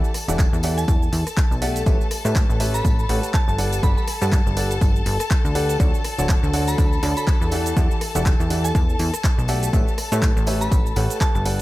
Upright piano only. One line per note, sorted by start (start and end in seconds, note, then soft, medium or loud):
0.28 0.44 E3 medium
0.28 0.44 G4 medium
0.28 0.44 A4 medium
0.28 0.44 D5 medium
0.28 0.44 E5 medium
0.28 0.44 F#5 medium
0.63 0.82 E3 medium
0.63 0.82 G4 medium
0.63 0.82 A4 medium
0.63 0.82 D5 medium
0.63 0.82 E5 medium
0.63 0.82 F#5 loud
1.62 1.80 A3 loud
1.62 1.80 G4 medium
1.62 1.80 A4 medium
1.62 1.80 D5 medium
1.62 1.80 E5 medium
1.62 1.80 F#5 loud
1.86 2.05 A3 medium
1.86 2.05 G4 medium
1.86 2.05 A4 medium
1.86 2.05 B4 medium
1.86 2.05 C#5 medium
1.86 2.05 E5 medium
2.25 2.58 A3 medium
2.25 2.58 G4 medium
2.25 2.58 A4 medium
2.25 2.58 B4 medium
2.25 2.58 C#5 medium
2.25 2.58 E5 medium
2.60 2.88 A3 medium
2.60 2.88 G4 medium
2.60 2.88 A4 medium
2.60 2.88 B4 medium
2.60 2.88 C#5 medium
2.60 2.88 E5 loud
3.09 3.56 A3 medium
3.09 3.56 G4 medium
3.09 3.56 A4 medium
3.09 3.56 B4 medium
3.09 3.56 C#5 medium
3.09 3.56 F#5 medium
3.58 3.81 G3 medium
3.58 3.81 G4 medium
3.58 3.81 A4 medium
3.58 3.81 B4 medium
3.58 3.81 D5 medium
3.58 3.81 F#5 loud
3.83 4.01 G3 medium
3.83 4.01 G4 medium
3.83 4.01 A4 medium
3.83 4.01 B4 medium
3.83 4.01 D5 medium
3.83 4.01 F#5 medium
4.22 4.38 G3 medium
4.22 4.38 G4 medium
4.22 4.38 A4 medium
4.22 4.38 B4 medium
4.22 4.38 D5 medium
4.22 4.38 F#5 medium
4.57 4.75 G3 medium
4.57 4.75 G4 medium
4.57 4.75 A4 medium
4.57 4.75 B4 medium
4.57 4.75 D5 medium
4.57 4.75 F#5 medium
5.55 5.73 G4 loud
5.55 5.73 A4 medium
5.55 5.73 B4 medium
5.55 5.73 D5 medium
5.55 5.73 F#5 loud
5.80 5.98 D3 medium
5.80 5.98 F#4 medium
5.80 5.98 A4 medium
5.80 5.98 C#5 medium
5.80 5.98 D5 medium
5.80 5.98 F#5 medium
6.19 6.51 D3 medium
6.19 6.51 F#4 medium
6.19 6.51 A4 medium
6.19 6.51 C#5 medium
6.19 6.51 D5 medium
6.19 6.51 F#5 medium
6.54 6.81 D3 medium
6.54 6.81 F#4 medium
6.54 6.81 A4 medium
6.54 6.81 C#5 medium
6.54 6.81 D5 medium
6.54 6.81 F#5 loud
7.03 7.49 D3 medium
7.03 7.49 F#4 medium
7.03 7.49 A4 medium
7.03 7.49 C#5 medium
7.03 7.49 D5 medium
7.03 7.49 A5 medium
7.52 7.74 E3 medium
7.52 7.74 G4 medium
7.52 7.74 A4 medium
7.52 7.74 D5 medium
7.52 7.74 E5 medium
7.52 7.74 F#5 loud
7.77 7.95 E3 medium
7.77 7.95 G4 medium
7.77 7.95 A4 medium
7.77 7.95 D5 medium
7.77 7.95 E5 medium
7.77 7.95 F#5 medium
8.15 8.31 E3 medium
8.15 8.31 G4 medium
8.15 8.31 A4 medium
8.15 8.31 D5 medium
8.15 8.31 E5 medium
8.15 8.31 F#5 medium
8.50 8.69 E3 medium
8.50 8.69 G4 medium
8.50 8.69 A4 medium
8.50 8.69 D5 medium
8.50 8.69 E5 medium
8.50 8.69 F#5 medium
9.49 9.67 A3 loud
9.49 9.67 G4 medium
9.49 9.67 A4 medium
9.49 9.67 D5 medium
9.49 9.67 E5 medium
9.49 9.67 F#5 loud
9.73 9.91 A3 medium
9.73 9.91 G4 medium
9.73 9.91 A4 medium
9.73 9.91 B4 medium
9.73 9.91 C#5 medium
9.73 9.91 E5 medium
10.12 10.45 A3 medium
10.12 10.45 G4 medium
10.12 10.45 A4 medium
10.12 10.45 B4 medium
10.12 10.45 C#5 medium
10.12 10.45 E5 medium
10.47 10.75 A3 loud
10.47 10.75 G4 medium
10.47 10.75 A4 medium
10.47 10.75 B4 medium
10.47 10.75 C#5 medium
10.47 10.75 E5 loud
10.96 11.43 A3 medium
10.96 11.43 G4 medium
10.96 11.43 A4 medium
10.96 11.43 B4 medium
10.96 11.43 C#5 medium
10.96 11.43 F#5 medium
11.45 11.62 G3 medium
11.45 11.62 G4 medium
11.45 11.62 A4 medium
11.45 11.62 B4 medium
11.45 11.62 D5 medium
11.45 11.62 F#5 medium